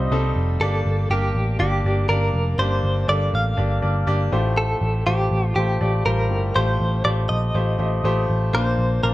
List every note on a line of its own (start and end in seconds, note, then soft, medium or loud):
0.00 0.63 C3 medium
0.00 0.12 G3 medium
0.00 0.12 C4 medium
0.00 0.12 D#4 medium
0.00 0.62 F4 medium
0.00 0.63 C5 loud
0.00 0.32 D#5 loud
0.11 0.31 C2 loud
0.11 0.50 G3 medium
0.11 0.50 C4 medium
0.11 0.50 D#4 medium
0.11 0.50 A4 loud
0.36 0.56 F1 medium
0.60 0.81 G1 loud
0.60 1.32 G2 medium
0.60 1.00 A#3 medium
0.60 1.00 D4 medium
0.60 1.00 G4 medium
0.60 1.10 A4 medium
0.60 1.00 D5 loud
0.85 1.06 G1 medium
1.10 1.30 G1 loud
1.10 1.50 A#3 medium
1.10 1.50 D4 medium
1.10 1.57 G4 medium
1.10 1.50 G4 medium
1.10 1.50 A#4 medium
1.35 1.55 A1 medium
1.60 1.80 G1 loud
1.60 1.79 A#3 medium
1.60 1.80 D4 medium
1.60 2.09 G4 medium
1.60 1.80 G4 medium
1.60 1.79 D5 medium
1.84 2.05 G1 medium
1.84 2.05 A#3 medium
1.84 2.05 D4 medium
1.84 2.05 G4 medium
1.84 2.05 D5 medium
2.09 2.29 G1 loud
2.09 2.48 A#3 medium
2.09 2.48 D4 medium
2.09 2.48 G4 medium
2.09 2.60 A#4 medium
2.09 2.48 D5 medium
2.34 2.54 F1 medium
2.58 2.79 G1 loud
2.58 3.29 G2 medium
2.58 2.97 A#3 medium
2.58 2.98 D4 medium
2.58 2.98 G4 medium
2.58 3.09 C5 medium
2.58 2.98 D5 loud
2.83 3.04 G1 medium
3.07 3.29 G1 medium
3.07 3.47 A#3 medium
3.07 3.47 D4 medium
3.07 3.47 G4 medium
3.07 3.47 A4 medium
3.07 3.34 D5 medium
3.33 3.54 A1 medium
3.33 4.29 F5 loud
3.57 3.78 G1 loud
3.57 3.77 A#3 medium
3.57 3.77 D4 medium
3.57 3.77 G4 medium
3.57 3.77 D5 medium
3.82 4.03 G1 medium
3.82 4.02 A#3 medium
3.82 4.02 D4 medium
3.82 4.02 G4 medium
3.82 4.02 D5 medium
4.07 4.28 G1 medium
4.07 4.32 A#3 medium
4.07 4.32 D4 medium
4.07 4.31 G4 medium
4.07 4.32 D5 loud
4.32 4.73 A1 medium
4.32 5.03 A2 medium
4.32 4.92 A3 medium
4.32 4.92 F4 medium
4.32 4.92 G4 medium
4.32 4.92 C5 medium
4.58 5.03 A4 medium
4.81 5.02 A1 medium
5.07 5.27 A1 medium
5.07 5.45 A3 medium
5.07 5.45 F4 medium
5.07 5.55 G4 medium
5.07 5.46 G4 medium
5.07 5.46 C5 medium
5.31 5.52 A1 medium
5.56 5.77 A1 medium
5.56 5.76 A3 medium
5.56 5.76 F4 medium
5.56 6.05 G4 medium
5.56 5.76 G4 medium
5.56 5.76 C5 medium
5.81 6.02 A1 medium
5.81 6.00 A3 medium
5.81 6.00 F4 medium
5.81 6.00 G4 medium
5.81 6.00 D5 medium
6.06 6.31 A1 loud
6.06 6.45 G3 medium
6.06 6.45 F4 medium
6.06 6.45 G4 medium
6.06 6.57 A#4 medium
6.06 6.45 C5 medium
6.31 6.51 G1 medium
6.31 7.01 A2 medium
6.55 6.76 A1 loud
6.55 6.94 A3 medium
6.55 6.94 F4 medium
6.55 6.94 G4 medium
6.55 6.94 C5 loud
6.55 7.04 C5 medium
6.80 7.01 A1 loud
7.04 7.26 A1 loud
7.04 7.43 A3 medium
7.04 7.44 F4 medium
7.04 7.44 G4 medium
7.04 7.44 C5 medium
7.04 7.12 D5 loud
7.29 7.50 A#1 medium
7.29 8.25 D#5 loud
7.55 7.75 A1 loud
7.55 7.74 A3 medium
7.55 7.74 F4 medium
7.55 7.74 G4 medium
7.55 7.74 C5 medium
7.79 7.99 A1 loud
7.79 7.99 A3 medium
7.79 7.99 F4 medium
7.79 7.99 G4 medium
7.79 7.99 C5 medium
8.04 8.24 A1 loud
8.04 8.43 A3 medium
8.04 8.43 F4 medium
8.04 8.43 G4 medium
8.04 8.44 C5 loud
8.30 8.50 A1 medium
8.53 8.74 A#1 loud
8.53 9.14 A#2 medium
8.53 8.92 A#3 medium
8.53 8.93 D4 medium
8.53 8.93 F4 medium
8.53 8.93 C5 loud
8.53 9.03 C5 medium
8.78 8.99 A#1 medium
9.03 9.14 A#1 medium
9.03 9.14 A#3 medium
9.03 9.14 D4 medium
9.03 9.14 F4 medium
9.03 9.14 A#4 medium
9.03 9.14 C5 medium